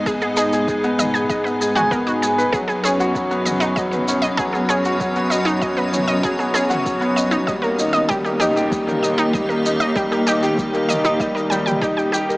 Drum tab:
SH |xxxxxxxxxxxxxxxx|xxxxxxxxxxxxxxxx|xxxxxxxxxxxxxxxx|xxxxxxxxxxxxxxxx|
T2 |------o----o----|------o--o------|------o----o----|------o--o------|
BD |o---o---o---o---|o---o---o---o---|o---o---o---o---|o---o---o---o---|

SH |xxxxxxxxxxxxxxxx|
T2 |------o----o----|
BD |o---o---o---o---|